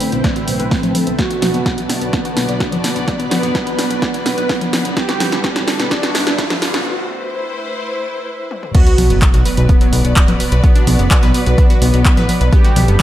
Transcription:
Already playing: A2 D3 E3 A3 C4 E4 A4 B4 E5
0.00 D4, open hi-hat
0.05 A5
0.12 B1 B3, closed hi-hat
0.24 D5, kick, snare, closed hi-hat
0.36 F#4, closed hi-hat
0.48 B1 C4, open hi-hat
0.60 B1 B4, closed hi-hat
0.71 F#3, kick, snare, open hi-hat
0.83 A1 C4, closed hi-hat, low conga
0.95 A2 E3 A3 C4, open hi-hat, low conga
1.07 B1 B3, closed hi-hat
1.18 B2 F#3 B3 D4 F#4 B4 D5, kick, snare, closed hi-hat, riser
1.31 F#4, closed hi-hat
1.39 B1 B3 B4, snare, open hi-hat, low conga
1.52 F#1 B3 B5, closed hi-hat
1.64 B3 F#5, kick, snare, closed hi-hat
1.78 B1 F#3, closed hi-hat
1.89 D4, snare, open hi-hat
2.01 B1 B3, closed hi-hat
2.13 B3 D5, kick, snare, closed hi-hat
2.25 F#4, closed hi-hat
2.37 B1 B3, snare, open hi-hat
2.49 B1 D4, closed hi-hat
2.60 F#3, kick, snare, closed hi-hat
2.72 F#1 B3, closed hi-hat, low conga
2.84 B2 F#3 B3 D4, snare, open hi-hat
2.96 B1 B3, closed hi-hat
3.08 B2 F#3 B3 D5, kick, snare, closed hi-hat
3.20 B3, closed hi-hat
3.31 B1 B3, snare, open hi-hat, low conga
3.43 F#1 B3, closed hi-hat
3.55 F#3, kick, snare, closed hi-hat
3.67 B1 B3, closed hi-hat
3.78 D4, snare, open hi-hat
3.90 B1 B3, closed hi-hat
4.02 D5, kick, snare, closed hi-hat
4.14 F#4, closed hi-hat
4.26 B1 B3, snare, open hi-hat
4.38 B1 B4, closed hi-hat
4.49 F#3, kick, snare, open hi-hat
4.61 F#1 B3, closed hi-hat, low conga
4.73 B2 F#3 B3, snare, open hi-hat, low conga
4.85 B1 B3, closed hi-hat
4.97 G2 D3 G3 B3 D4 G4 A4, kick, snare, closed hi-hat
5.09 F#4, snare, closed hi-hat
5.20 B1 B3, snare, open hi-hat, low conga
5.32 F#1 B3, snare, closed hi-hat
5.44 B3, kick, snare, closed hi-hat
5.49 G5
5.56 B1 F#3, snare, closed hi-hat
5.68 D4, snare, open hi-hat
5.79 B1 B3, snare, closed hi-hat
5.91 D4 D5, kick, snare, closed hi-hat
6.03 F#4, snare, closed hi-hat
6.15 B1 B3, snare, open hi-hat
6.27 B1 D4, snare, closed hi-hat
6.38 F#3, kick, snare, closed hi-hat
6.50 F#1 B3, snare, closed hi-hat, low conga
6.62 G2 D3 G3 D4, snare, open hi-hat
6.74 B1 B3, snare, closed hi-hat
6.85 A3 E4 B4 C5
8.51 high tom
8.63 mid tom
8.74 B2 F#3 B3 F#4 B4 D5, kick, closed hi-hat, crash, sub drop
8.87 F#4, closed hi-hat
8.98 B1 B3, open hi-hat, low conga
9.02 F#4
9.10 F#1 B3, closed hi-hat
9.17 D5
9.22 A3, kick, clap, closed hi-hat
9.34 B1 F#4, closed hi-hat
9.45 B4, open hi-hat
9.57 B1 B4, closed hi-hat
9.66 B3 B5, kick, closed hi-hat
9.81 F#3, closed hi-hat
9.93 B1 B3, open hi-hat
10.05 B1 B3, closed hi-hat
10.16 F#4, kick, clap, closed hi-hat
10.28 A1 B4, closed hi-hat, low conga
10.40 B2 F#3 B3 B4, open hi-hat
10.52 B1 B4, closed hi-hat
10.64 B2 F#3 B3, kick, closed hi-hat
10.76 D4, closed hi-hat
10.87 B1 B3, open hi-hat, low conga
10.99 F#1 B3, closed hi-hat
11.11 F#4, kick, clap, closed hi-hat
11.23 B1 B4, closed hi-hat
11.34 B4, open hi-hat
11.46 B1 B4, closed hi-hat
11.58 D4, kick, closed hi-hat
11.70 F#4, closed hi-hat
11.82 B1 B3, open hi-hat
11.94 B1 B3, closed hi-hat
12.05 B4, kick, clap, closed hi-hat
12.17 A1 B4, closed hi-hat, low conga
12.29 B2 F#3 B3 B4, open hi-hat, low conga
12.41 B1 B4, closed hi-hat
12.53 G2 D3 G3 B3 D4 G4 A4, kick, closed hi-hat
12.65 F#4, closed hi-hat
12.76 B1 B3, open hi-hat, low conga
12.88 F#1 B3, closed hi-hat

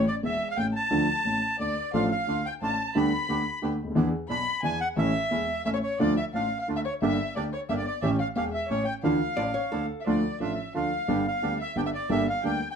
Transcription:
0.07 D5
0.23 E1 E2 E5
0.50 F5
0.57 A1 A2 G5
0.74 A5
0.91 D2 D3 F3 A3 D4 A4
1.25 A1 A2
1.59 D2 D3 D5
1.93 A1 A2 F3 A3 D4 F4 A4 F5
2.10 F5
2.27 D2 D3 A3 D4 F4
2.46 G5
2.61 A1 A2 A3 D4 F4 A5
2.95 D2 D3 G3 A3 B3 D4 G4 A4 B5
3.28 D2 D3 A3 B3 G4
3.62 D2 D3 A3 B3 G4
3.83 C#2
3.87 D2
3.92 D#2 E3 G#3 D4 E4
3.96 E2 B3 D4 G#4
4.29 B1 B2 G#3 D4 E4 B5
4.63 E2 E3 G#3 D4 E4 G#5
4.80 F#5
4.96 A1 A2 E3 A3 C#4 E4 A4 E5
5.31 E1 E2 A3 C#4 E4
5.65 A1 A2 A3 C#4 E4 E5
5.74 C#5
5.83 C#5
5.99 D2 D3 F3 A3 D4 F4 A4 D5
6.17 E5
6.33 A1 A2 A3 D4 F4 F5
6.59 F5
6.68 D2 D3 A3 D4 F4
6.76 E5
6.85 C#5
7.02 G1 G2 D3 G3 A#3 D4 G4 E5
7.36 D2 D3 A#3 D4 G4 D5
7.53 C#5
7.69 G1 G2 A#3 D4 G4 E5
7.77 D5
7.85 D5
8.02 A1 A2 E3 A3 C#4 G4 E5
8.19 F5
8.36 E1 E2 A3 C#4 G4 F5
8.52 E5
8.69 A1 A2 A3 C#4 G4 C#5
8.85 G5
9.03 D2 D3 E3 F3 A3 D4 E4 F4 F5
9.36 A1 A2 F3 D4 E4 D5
9.54 C#5
9.71 D2 D3 F3 D4 E4 A4
10.00 E5
10.05 D2 D3 F3 A3 D4 F4 A4 D5
10.40 A1 A2 F3 A3 D4 F4 A4 E5
10.74 D2 D3 F3 A3 D4 F4 A4 F5
11.08 G1 G2 D3 G3 B3 D4 G4
11.26 F5
11.42 D2 D3 G3 B3 D4 G4
11.60 E5
11.76 G1 G2 D3 G3 B3 D4 G4 G5
11.86 E5
11.94 D5
12.09 G1 G2 D3 G3 A#3 D4 G4 E5
12.28 F5
12.43 D2 D3 G3 A#3 D4 G4 G5
12.71 G5

